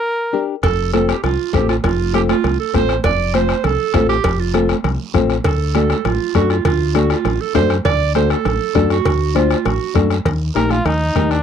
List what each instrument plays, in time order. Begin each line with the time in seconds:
Already playing: trumpet A#4
0.33 nylon-string guitar D4 G4 A#4
0.63 fingered electric bass F1, clarinet A4, bombo low, bombo rim, cowbell, long guiro
0.93 nylon-string guitar C4 F4 A4, clarinet A4, bombo rim, high conga, short guiro
1.08 clarinet G4, bombo rim, short guiro
1.24 fingered electric bass C2, clarinet F4, bombo rim, cowbell, low conga, long guiro
1.53 fingered electric bass A1, nylon-string guitar C4 F4 A4, clarinet G4, bombo low, bombo rim, high conga, low conga, low timbale, short guiro
1.69 clarinet F4, bombo rim, short guiro
1.84 fingered electric bass F1, clarinet F4, bombo low, bombo rim, cowbell, long guiro
2.13 nylon-string guitar C4 F4 A4, clarinet G4, bombo rim, high conga, short guiro
2.29 clarinet F4, bombo rim, high conga, short guiro
2.44 fingered electric bass C2, bombo rim, cowbell, low conga, long guiro
2.60 clarinet A4
2.74 fingered electric bass A1, nylon-string guitar C4 F4 A4, clarinet C5, bombo low, bombo rim, high conga, short guiro
2.89 bombo rim, short guiro
3.04 fingered electric bass F1, clarinet D5, bombo low, bombo rim, cowbell, low conga, long guiro
3.34 nylon-string guitar C4 F4 C5, clarinet C5, bombo rim, high conga, short guiro
3.49 bombo rim, short guiro
3.64 fingered electric bass C2, clarinet A4, bombo rim, cowbell, low conga, long guiro
3.94 fingered electric bass A1, nylon-string guitar C4 F4 A4, bombo low, bombo rim, high conga, low conga, low timbale, short guiro
4.09 clarinet G4, bombo rim, short guiro
4.24 fingered electric bass F1, bombo low, bombo rim, cowbell, long guiro
4.40 clarinet F4
4.54 nylon-string guitar C4 F4 A4, bombo rim, high conga, short guiro
4.69 bombo rim, high conga, short guiro
4.84 fingered electric bass C2, bombo rim, cowbell, low conga, long guiro
5.14 fingered electric bass A1, nylon-string guitar C4 F4 A4, bombo low, bombo rim, high conga, low conga, short guiro
5.30 bombo rim, short guiro
5.44 fingered electric bass D2, clarinet A4, bombo low, bombo rim, cowbell, long guiro
5.75 nylon-string guitar D4 F#4 A4, clarinet A4, bombo rim, high conga, short guiro
5.90 bombo rim, high conga, short guiro
6.05 fingered electric bass A1, clarinet F4, bombo rim, cowbell, low conga, long guiro
6.35 fingered electric bass F#2, nylon-string guitar D4 F#4 A4, clarinet F#4, bombo low, bombo rim, high conga, short guiro
6.50 clarinet F4, bombo rim, short guiro
6.65 fingered electric bass D2, clarinet F4, bombo low, bombo rim, cowbell, low conga, long guiro
6.94 nylon-string guitar D4 F#4 A4, clarinet F#4, bombo rim, high conga, short guiro
7.10 clarinet F4, bombo rim, short guiro
7.25 fingered electric bass A1, bombo rim, cowbell, low conga, long guiro
7.41 clarinet A4
7.55 fingered electric bass F#2, nylon-string guitar D4 F#4 A4, clarinet C5, bombo low, bombo rim, high conga, low conga, low timbale, short guiro
7.70 bombo rim, short guiro
7.85 fingered electric bass D2, clarinet D5, bombo low, bombo rim, cowbell, low conga, long guiro
8.15 nylon-string guitar D4 F#4 A4, clarinet C5, bombo rim, high conga, short guiro
8.30 clarinet A4, bombo rim, short guiro
8.45 fingered electric bass A1, bombo rim, cowbell, low conga, long guiro
8.75 fingered electric bass F#2, nylon-string guitar D4 F#4 A4, bombo low, bombo rim, high conga, short guiro
8.90 clarinet F#4, bombo rim, short guiro
9.05 fingered electric bass D2, bombo low, bombo rim, cowbell, long guiro
9.35 nylon-string guitar D4 F#4 C5, clarinet F4, bombo rim, high conga, short guiro
9.50 bombo rim, short guiro
9.65 fingered electric bass A1, clarinet F#4, bombo rim, cowbell, low conga, long guiro
9.95 fingered electric bass F#2, nylon-string guitar D4 F#4 A4, bombo low, bombo rim, high conga, short guiro
10.10 bombo rim, short guiro
10.25 fingered electric bass D#2, bombo low, bombo rim, cowbell, low conga, long guiro
10.55 fingered electric bass A#1, nylon-string guitar D#4 G4 A#4, trumpet A#4, bombo rim, high conga, short guiro
10.70 trumpet F4, bombo rim, high conga, short guiro
10.85 fingered electric bass D#2, trumpet D#4, bombo rim, cowbell, low conga, long guiro
11.15 fingered electric bass D#2, nylon-string guitar D#4 G4 A#4, bombo low, bombo rim, high conga, short guiro
11.31 trumpet D4, bombo rim, short guiro